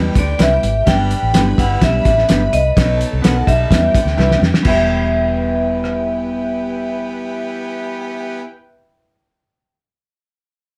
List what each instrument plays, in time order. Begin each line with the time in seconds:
Already playing: saxophone section B2 G3 D#4, reed electric piano G3 B3 E4 B4, violin section G4 G5
0.15 fingered electric bass D2, saxophone section D3 B3 D4, vibraphone D5, kick, closed hi-hat
0.39 fingered electric bass C2, reed electric piano G3 B3 E4 B4, clean electric guitar B3 E4 G4 B4, vibraphone E5, snare, closed hi-hat
0.63 fingered electric bass G#1, closed hi-hat
0.85 fingered electric bass G1, saxophone section B2 G3 D4, reed electric piano G3 B3 D4 B4, violin section B4 B5, vibraphone G5, kick, snare, closed hi-hat
1.11 closed hi-hat
1.23 fingered electric bass A1
1.33 fingered electric bass G1, saxophone section D3 B3 G4, reed electric piano G3 B3 D4 E4, clean electric guitar B3 D4 G4 B4, snare, closed hi-hat
1.58 fingered electric bass G1, saxophone section B2 G3 E4, vibraphone F#5, kick, closed hi-hat
1.81 fingered electric bass B1, reed electric piano G3 B3 D4 G4, vibraphone E5, kick, snare, closed hi-hat
2.05 fingered electric bass A1, saxophone section B2 G3 D4, kick, closed hi-hat
2.18 snare
2.28 fingered electric bass G1, reed electric piano G3 B3 D4 G4, clean electric guitar B3 D4 G4 B4, snare, closed hi-hat
2.53 fingered electric bass C2, vibraphone D#5, closed hi-hat
2.76 fingered electric bass B1, saxophone section B2 F#3 D#4, reed electric piano F#3 B3 D#4 B4, violin section A4 A5, kick, snare, closed hi-hat
3.01 closed hi-hat
3.13 fingered electric bass C2
3.22 fingered electric bass B1, saxophone section D#3 B3 F#4, reed electric piano F#3 B3 D#4 A4, clean electric guitar B3 D#4 F#4 B4, vibraphone F#5, snare, closed hi-hat
3.46 fingered electric bass B1, saxophone section B2 G3 D#4, vibraphone E5, kick, closed hi-hat
3.70 fingered electric bass E2, reed electric piano G3 B3 E4 B4, violin section G4 G5, kick, snare, closed hi-hat
3.94 saxophone section D3 B3 D4, kick, closed hi-hat
4.05 fingered electric bass D2, snare
4.17 fingered electric bass C2, reed electric piano G3 B3 E4 B4, clean electric guitar B3 E4 G4 B4, snare
4.31 snare
4.41 fingered electric bass F2, snare
4.54 snare
4.62 fingered electric bass E1, saxophone section E3 B3 G4, reed electric piano G3 B3, clean electric guitar B3 E4, vibraphone E5, kick, crash
4.67 reed electric piano E4 B4, violin section E4 B4 G5, clean electric guitar G4 B4
5.84 cross-stick